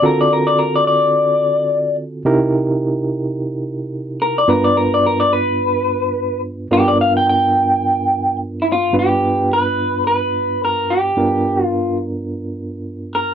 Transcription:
0.02 D3 C4 F4 F#4 A4 A#4
0.21 D5
0.33 A#4
0.47 D5
0.58 A#4
0.76 D5
0.87 D5
2.25 C3 D#4 E4 G4 A#4
4.22 A#4
4.38 D5
4.48 G2 B3 D4 F4 A#4 B4
4.64 D5
4.77 A#4
4.94 D5
5.06 A#4
5.20 D5
5.33 B4
6.71 G2 B3 D4 F4 G4 A#4
6.88 D5
7.01 F5
7.17 G5
7.29 G5
8.62 E4
8.72 F4
8.93 G2 B3 D4 F4 B4
8.99 G4
9.53 B4
10.07 B4
10.65 A#4
10.90 G4
11.17 G2 B3 D4 F4 A#4
11.64 F4
13.15 A#4

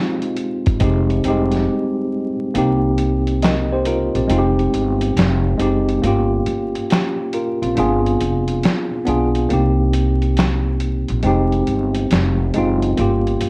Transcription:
Already playing: G#3 C4 D#4 F4 G4
0.22 closed hi-hat
0.37 closed hi-hat
0.66 G#1, kick, closed hi-hat
0.80 F1 G#3 C4 D#4, kick, closed hi-hat
0.84 G4
1.10 closed hi-hat
1.24 F1 G3 C4 D#4, closed hi-hat
1.28 G#3 G4
1.52 snare, closed hi-hat
2.54 C2 A#3 C4 D#4, closed hi-hat
2.58 G4
2.98 closed hi-hat
3.27 closed hi-hat
3.42 A#4 D#5, finger snap, snare, closed hi-hat
3.72 G4 C5
3.85 F4 A#4, closed hi-hat
4.15 A#1 C4 G4, closed hi-hat
4.27 F1 G#3 C4 D#4, closed hi-hat
4.32 F4
4.38 G4
4.59 closed hi-hat
4.73 G1, closed hi-hat
5.01 closed hi-hat
5.17 F1, finger snap, snare, closed hi-hat
5.58 F#1 G#3 C4 D#4, closed hi-hat
5.62 G4
5.89 closed hi-hat
6.02 G1 A#3 C#4 F4, closed hi-hat
6.07 G4
6.46 G1, closed hi-hat
6.75 closed hi-hat
6.90 C#4 G4, finger snap, snare, closed hi-hat
7.33 F4 A#4, closed hi-hat
7.62 A#1 C4 F4, closed hi-hat
7.75 G1 A#3 D4 F4, closed hi-hat
7.79 B3 G#4
8.06 closed hi-hat
8.20 F1, closed hi-hat
8.48 closed hi-hat
8.63 finger snap, snare, closed hi-hat
9.05 B1 B3 D4 F4, closed hi-hat
9.09 G#4
9.35 closed hi-hat
9.49 C2 A#3 C4 D#4, closed hi-hat
9.53 G4
9.93 closed hi-hat
10.22 closed hi-hat
10.37 finger snap, snare, closed hi-hat
10.80 closed hi-hat
11.08 A#1, closed hi-hat
11.23 F1 G#3 C4 D#4, closed hi-hat
11.27 G4
11.52 closed hi-hat
11.67 G1, closed hi-hat
11.95 closed hi-hat
12.11 F1, finger snap, snare, closed hi-hat
12.54 F#1 G#3 C4 D#4, closed hi-hat
12.58 F4
12.83 closed hi-hat
12.97 G1 A#3 C#4 F4 G4, closed hi-hat
13.27 closed hi-hat
13.41 G1, closed hi-hat

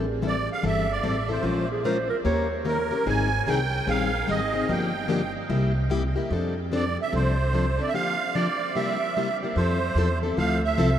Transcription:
Already playing: A1
0.22 E3 G3 C4 E4 A4
0.27 D5
0.53 F5
0.63 G1 E3 G3 C4 E4 A4 E5
0.92 D5
1.03 A1 E3 G3 C4 E4 A4
1.29 C4 E4 A4 C5
1.43 A#1 F3 G#3 C#4 F4 A#4
1.72 G#4
1.84 F3 G#3 C#4 F4 A#4 C5
2.10 A#4
2.25 D#2 D#3 A#3 C#4 G4 A#4 C#5
2.65 D#3 A#3 C#4 G4 A#4
2.91 C#4 G4 A#4
3.06 G#1 D#3 G3 C4 D#4 G#4 G#5
3.46 C2 D#3 G3 C4 D#4 G#4 G5
3.87 A#1 D#3 G3 C4 D#4 G#4 F5
4.27 G#1 D#3 G3 C4 D#4 G#4 D#5
4.53 C4 D#4 G#4
4.68 G1 D3 F3 A#3 D4 G4 G5
5.08 D3 F3 A#3 D4 G4
5.50 C2 C3 G3 A#3 E4 G4
5.90 C3 G3 A#3 E4 G4
6.16 A#3 E4 G4
6.31 F2 F3 C4 D4 A4
6.72 F3 C4 D4 A4 D5
7.02 E5
7.12 C2 F3 C4 D4 A4 C5
7.53 F3 C4 D4 A4
7.78 C4 D4 A4 D5
7.89 E5
7.94 D3 F3 A#3 D4 G4 F5
8.34 D3 F3 A#3 D4 G4 D5
8.75 C3 G3 A#3 E4 G4 E5
9.16 C3 G3 A#3 E4 G4
9.43 A#3 E4 G4
9.56 F2 F3 C4 E4 A4 C5
9.95 E2 F3 C4 E4 A4
10.23 C4 E4 A4
10.37 D2 F3 C4 E4 A4 F5
10.64 E5
10.77 C2 F3 C4 E4 A4

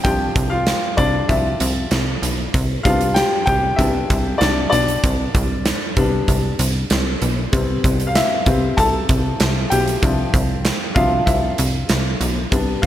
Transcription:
0.04 C2 F3 D4 G4 G5, kick, closed hi-hat
0.36 C2, kick, closed hi-hat
0.50 F4 F5
0.67 snare, closed hi-hat
0.97 C2 D4 D5, kick, closed hi-hat
1.28 C2 F3 D4 E4 E5, kick, closed hi-hat
1.60 C2, closed hi-hat
1.91 C2, snare, closed hi-hat
2.22 B1, closed hi-hat
2.54 C2, kick, closed hi-hat
2.83 C2 G3 B3 D4 F4 F5, kick, closed hi-hat
3.01 closed hi-hat
3.14 G4 G5, snare, closed hi-hat
3.46 C2 G4 G5, kick, closed hi-hat
3.76 C2 G3 B3 D4 E4 E5, kick, closed hi-hat
4.10 C2, kick, closed hi-hat
4.38 C2 D4 D5, snare, closed hi-hat
4.70 B1 D4 D5, closed hi-hat
4.88 closed hi-hat
5.04 C2, kick, closed hi-hat
5.35 C2, kick, closed hi-hat
5.65 snare, closed hi-hat
5.97 C2 G3 B3 D4, kick, closed hi-hat
6.28 C2, kick, closed hi-hat
6.59 C2, closed hi-hat
6.90 C2, snare, closed hi-hat
7.22 B1, closed hi-hat
7.52 C2 G3 B3 C4, kick, closed hi-hat
7.84 C2, kick, closed hi-hat
8.00 closed hi-hat
8.07 F5
8.15 E4 E5, snare, clap, closed hi-hat
8.46 C2 G3 B3 C4, kick, closed hi-hat
8.77 C2 A4 A5, kick, closed hi-hat
9.09 C2, kick, closed hi-hat
9.40 C2, snare, clap, closed hi-hat
9.70 B1 G4 G5, closed hi-hat
9.88 closed hi-hat
10.02 C2 F3 D4 E4, kick, closed hi-hat
10.34 C2, kick, closed hi-hat
10.65 snare, clap, closed hi-hat
10.95 C2 F3 D4 F4 E5 F5, kick, closed hi-hat
11.26 C2 E4 E5, kick, closed hi-hat
11.58 C2, closed hi-hat
11.89 C2, snare, clap, closed hi-hat
12.21 B1, closed hi-hat
12.51 C2 G3 B3 D4, kick, closed hi-hat
12.82 F5

